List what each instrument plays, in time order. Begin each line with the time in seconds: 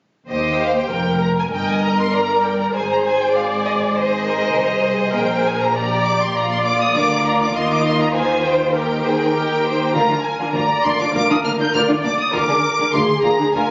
0.30 cello section D#2, double bass section D#2, violin section G4 C5 D#5, viola section C5
0.61 violin section F5
0.78 violin section G5
0.91 double bass section F1, cello section F2, violin section A#4 G5, viola section A#4
1.22 violin section A#5
1.39 violin section G#5
1.52 double bass section G1, cello section G2, violin section A#4 D#5 G5, viola section A#4
1.70 violin section G#5
1.84 violin section A#5
2.00 violin section C6
2.12 violin section D5 A#5
2.45 violin section G5
2.61 violin section A#5
2.74 double bass section G#1, cello section G#2, violin section G#4 C5 G#5, viola section C5
2.91 violin section A#5
3.05 violin section G#5
3.22 violin section G5
3.35 viola section D5, violin section F5
3.65 violin section D#5
3.95 violin section G#4 C5 D#5, viola section C5
4.25 violin section A#4
4.55 double bass section C2, cello section C3, violin section G#4 A#4
4.85 violin section C5
5.15 double bass section A#1, cello section A#2, viola section A#4, violin section G5
5.46 violin section G#5
5.61 violin section A#5
5.75 violin section G4 D5 A#5, viola section D5
6.05 violin section D6
6.21 violin section C6
6.35 double bass section A#1, cello section A#2, violin section F4 D5 A#5, viola section D5
6.52 violin section C6
6.65 violin section D6
6.81 violin section D#6
6.95 double bass section D2, cello section D3, violin section F4 A#4 D6
7.25 violin section A#5
7.42 violin section D6
7.55 double bass section D#2, cello section D#3, violin section A#4 C6, viola section D#5
7.72 violin section D6
7.85 violin section C6
8.01 violin section A#5
8.15 viola section C5, violin section C5 G#5
8.44 violin section G5
8.75 violin section G4 A#4 G5, viola section A#4
9.05 violin section G#4, viola section C5
9.34 violin section G4 A#4, viola section A#4
9.65 viola section C5
9.94 double bass section D2, cello section D3, violin section F4 A#4 A#5, viola section A#4
10.09 cello section D3, violin section D4 F4
10.23 violin section G#5
10.39 cello section D3, violin section D4 F4
10.53 double bass section D2, cello section D3, violin section F4 A#4 A#5, viola section D5
10.84 double bass section D2, cello section D3, violin section A#3 D4 C6
10.99 cello section D3, violin section D4 F4 D6
11.14 double bass section D2, cello section D3, violin section F4 A#4 D6, viola section A#4
11.29 cello section D3, violin section D4 F4 D#6
11.43 double bass section D2, cello section D3, violin section A#3 D4 F6
11.58 cello section D3, violin section D4 F4 G6
11.73 double bass section D2, cello section D3, violin section F4 A#4 F6, viola section D5
11.88 cello section D3, violin section D4 F4
12.02 double bass section D2, cello section D3, violin section A#3 D4 D6
12.20 violin section D#6
12.33 double bass section D2, cello section D3, violin section F4 A#4 D6, viola section A#4
12.48 cello section D3, violin section D4 G#4
12.78 cello section D3, violin section D4 G#4
12.93 double bass section D2, cello section D3, violin section F4 A#4 C6, viola section G#4
13.23 double bass section D2, cello section D3, violin section A#3 F4 A#5
13.39 cello section D3, violin section D4 G#4
13.54 double bass section D2, cello section D3, violin section F4 A#4 G#5, viola section A#4